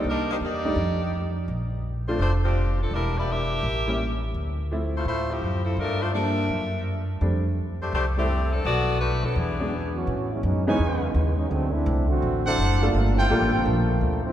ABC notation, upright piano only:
X:1
M:4/4
L:1/8
Q:"Swing" 1/4=167
K:Aphr
V:1 name="Upright piano"
[G,B,D_E]2 z [G,A,DE] z4 | z3 [A,CDF] z4 | z4 z [G,B,^CE] z2 | z2 [F,A,CE]3 z3 |
z2 [F,G,B,D]2 z4 | [G,A,CD] z4 [G,A,CE] z2 | z4 z [_G,^G,=B,D] z2 | z3 [E,^G,=B,^C^D] z4 |
z4 z [^F,A,CDE]2 [G,B,D=FA]- | [G,B,DFA]2 [G,B,DFA]3 z3 |]